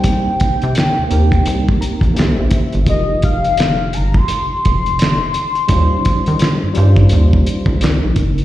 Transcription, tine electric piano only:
Already playing: A#3 C4 D#4 G4 C5
1.08 A#3 C4 D#4 G4
1.13 A#4
1.81 A#5
2.14 A#3 C#4 E4 G4 G5
2.18 C5
2.39 E5
2.52 E5
2.85 G#3 D#4 F4 G4
2.90 A#4
5.68 G3 C#4 D#4 F4
5.72 C5
6.74 G3 C#4 D#4 F4
6.78 C5
7.79 G#3 C4 D#4 E4
7.84 A#4

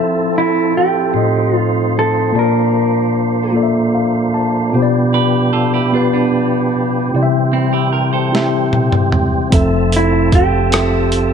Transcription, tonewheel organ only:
Already playing: F3 C4 E4 A4
1.14 A2 D#4 C5
2.35 A#3 D4
4.74 B2 B3 G4
7.15 E3 G3 C4
9.53 F3 A4 E5

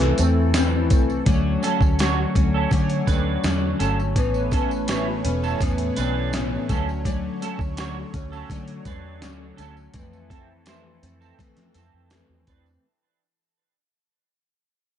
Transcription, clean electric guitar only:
1.64 C#4 A4
2.00 F#4 C#5
2.54 C#4 A4
3.07 D4 B4
3.79 C#4 A4
4.53 C#4 A4
4.89 E4 C#5
5.43 C#4 A4
5.97 D4 B4
6.70 C#4 A4
7.42 C#4 A4
7.77 F#4 C#5
8.32 C#4 A4
8.86 D4 B4
9.57 C#4 A4
10.30 C4 A4
10.66 E4 C5
11.21 C4 A4
11.75 C4 A4
12.48 D4 B4

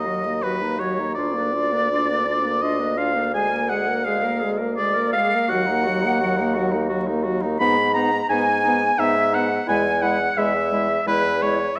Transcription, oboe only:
Already playing: D#5
0.42 B4
0.79 C#5
1.15 D5
2.62 D#5
2.98 F5
3.34 G#5
3.69 F#5
4.04 F5
4.77 D5
5.13 F5
5.49 F#5
7.60 B5
7.94 A#5
8.29 G#5
8.99 E5
9.34 F#5
9.68 G#5
10.02 F#5
10.37 E5
11.07 B4
11.42 C#5
11.76 E5

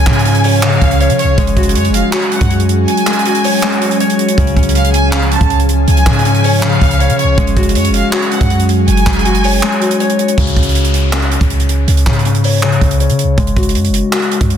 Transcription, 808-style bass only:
0.07 G#2
0.82 C#2
1.10 C#3
1.24 C#2
1.38 F#1
1.57 F#1
1.75 F#2
1.89 F#1
2.41 F#2
4.38 C#2
4.57 C#2
5.41 C#2
5.88 C#2
6.06 G#2
6.81 C#2
7.10 C#3
7.24 C#2
7.38 F#1
7.57 F#1
7.75 F#2
7.89 F#1
8.41 F#2
8.88 F#1
9.07 F#1
10.38 C#2
10.57 C#2
11.41 C#2
11.88 C#2
12.07 G#2
12.81 C#2
13.10 C#3
13.24 C#2
13.38 F#1
13.57 F#1
13.75 F#2
13.89 F#1
14.41 F#2

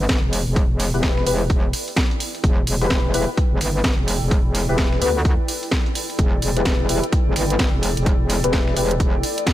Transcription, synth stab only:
0.94 B3 E4 G4 B4
1.27 B3 E4 G4 B4
2.82 B3 E4 G4 B4
3.14 B3 E4 G4 B4
4.69 B3 E4 G4 B4
5.02 B3 E4 G4 B4
6.57 B3 E4 G4 B4
6.89 B3 E4 G4 B4
8.44 B3 E4 G4 B4
8.77 B3 E4 G4 B4

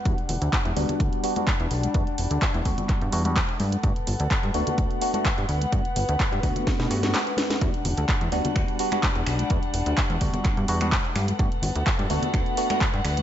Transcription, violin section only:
Already playing: F#5
0.06 G3 D4
3.60 B3 A4 F#5
5.49 B4
7.62 G3 D4 F#5
11.16 B3 A4 F#5
13.05 F#4

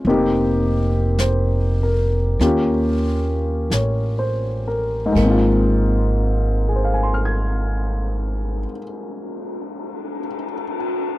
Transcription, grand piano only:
0.07 A#3 C4 D#4 G4
1.20 C5
1.83 A#4
2.41 A#3 C#4 F4 G4
3.74 C#5
4.19 C5
4.68 A#4
5.06 G#2
5.12 G#3
5.17 A#3
5.24 C4
5.30 F4
6.69 G#4
6.76 C5
6.85 F5
6.94 G#5
7.03 C6
7.14 F6
7.25 G#6

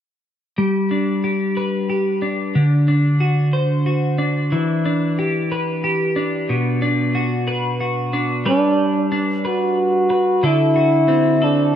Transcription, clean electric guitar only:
0.58 G3
0.91 D4
1.24 G4
1.57 B4
1.90 G4
2.22 D4
2.55 D3
2.88 D4
3.20 F#4
3.53 C5
3.86 F#4
4.18 D4
4.52 E3
4.85 D4
5.19 G4
5.52 B4
5.84 G4
6.16 D4
6.49 B2
6.82 D4
7.15 F#4
7.48 B4
7.81 F#4
8.13 D4
8.46 G3 B4
9.12 D4
9.45 B4
10.10 B4
10.43 D3 A4
10.76 F#4
11.08 C4
11.42 A4

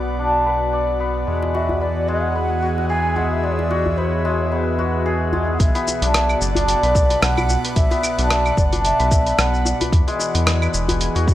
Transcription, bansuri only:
1.54 E5
1.82 D5
2.09 F#5
2.89 G#5
3.16 F#5
3.31 E5
3.43 D5
3.52 C#5
3.59 D5
3.97 C#5
4.51 B4
5.53 F#5
5.60 E5
6.41 D5
6.68 D5
7.22 F#5
7.76 E5
8.31 E5
8.58 D5
8.85 E5
9.39 F#5

